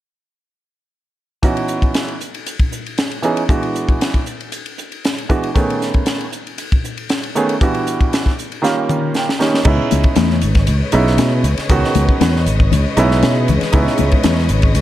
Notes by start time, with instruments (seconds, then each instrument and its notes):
1.43 grand piano E3 B3 C#4 D#4 F#4, kick, hi-hat pedal, ride
1.57 ride
1.68 hi-hat pedal
1.82 kick, ride
1.94 snare, hi-hat pedal, ride
2.08 ride
2.21 hi-hat pedal
2.34 ride
2.46 hi-hat pedal, ride
2.59 kick, ride
2.72 hi-hat pedal
2.86 ride
2.98 snare, hi-hat pedal, ride
3.11 ride
3.22 grand piano E3 B3 C#4 D#4 G#4, hi-hat pedal
3.37 ride
3.49 grand piano E3 G#3 B3 D4 F#4, kick, hi-hat pedal, ride
3.63 ride
3.75 hi-hat pedal
3.89 kick, ride
4.01 snare, hi-hat pedal, ride
4.14 kick, ride
4.26 hi-hat pedal
4.40 ride
4.52 hi-hat pedal, ride
4.66 ride
4.78 hi-hat pedal
4.92 ride
5.05 snare, hi-hat pedal, ride
5.18 ride
5.29 grand piano E3 G#3 B3 D4 F#4, kick, hi-hat pedal
5.43 ride
5.54 grand piano D#3 A3 B3 C#4 G#4, kick, hi-hat pedal, ride
5.70 ride
5.82 snare, hi-hat pedal
5.94 kick, ride
6.06 snare, hi-hat pedal, ride
6.21 ride
6.32 hi-hat pedal
6.47 ride
6.58 hi-hat pedal, ride
6.72 kick, ride
6.84 hi-hat pedal
6.97 ride
7.09 snare, hi-hat pedal, ride
7.23 ride
7.35 grand piano D#3 A3 B3 C#4 G#4, hi-hat pedal
7.49 ride
7.61 grand piano E3 G3 B3 D4 F#4, kick, hi-hat pedal, ride
7.74 ride
7.87 hi-hat pedal
8.01 kick, ride
8.13 snare, hi-hat pedal, ride
8.26 kick, snare, ride
8.39 hi-hat pedal
8.52 ride
8.62 grand piano D#3 G3 A#3 C#4 F4, snare, hi-hat pedal
8.89 hi-hat pedal, mid tom
9.14 grand piano G5, snare, hi-hat pedal
9.29 snare
9.39 grand piano D#3 G3 A#3 C#4 D#4 C#5, snare, hi-hat pedal
9.54 snare
9.65 fingered electric bass C#2, string section C#3 G#3 B4 C#5 D#5, grand piano G#3 B3 C#4 D#4 E4, kick, crash, muted conga
9.91 fingered electric bass C#2, hi-hat pedal, ride, muted conga, high conga
10.04 kick, ride
10.16 fingered electric bass E2, snare, hi-hat pedal, ride, high conga
10.30 snare
10.41 fingered electric bass G#1, hi-hat pedal, ride
10.55 kick, snare, ride
10.67 fingered electric bass C#2, hi-hat pedal, ride, muted conga
10.92 fingered electric bass B1, grand piano G#3 B3 C#4 D#4 E4, hi-hat pedal, ride
11.07 snare
11.18 fingered electric bass B2, snare, hi-hat pedal, ride, high conga
11.44 fingered electric bass C#2, hi-hat pedal, ride, muted conga
11.57 snare, ride
11.69 fingered electric bass C#2, grand piano D#3 G#3 B3 C#4 F#4, kick, hi-hat pedal, ride, muted conga
11.84 snare
11.95 fingered electric bass C#2, hi-hat pedal, ride, muted conga, high conga
12.09 kick
12.21 fingered electric bass E2, snare, hi-hat pedal, ride, high conga
12.36 snare
12.46 fingered electric bass G#1, hi-hat pedal, ride
12.60 kick
12.71 fingered electric bass C#2, hi-hat pedal, ride, muted conga, low conga
12.97 fingered electric bass B1, grand piano G#3 B3 C#4 D#4 E4, hi-hat pedal, ride
13.11 snare
13.22 fingered electric bass B2, snare, hi-hat pedal, ride, high conga
13.48 fingered electric bass C#2, hi-hat pedal, ride, muted conga, low conga
13.61 snare, ride
13.72 fingered electric bass C#2, grand piano G#3 B3 C#4 D#4 E4, kick, hi-hat pedal, ride
13.87 snare
13.98 fingered electric bass C#2, hi-hat pedal, ride, muted conga, high conga
14.11 kick, ride
14.23 fingered electric bass E2, snare, hi-hat pedal, ride, high conga
14.38 snare
14.49 fingered electric bass G#1, hi-hat pedal, ride
14.62 kick, ride
14.75 fingered electric bass C#2, hi-hat pedal, ride, muted conga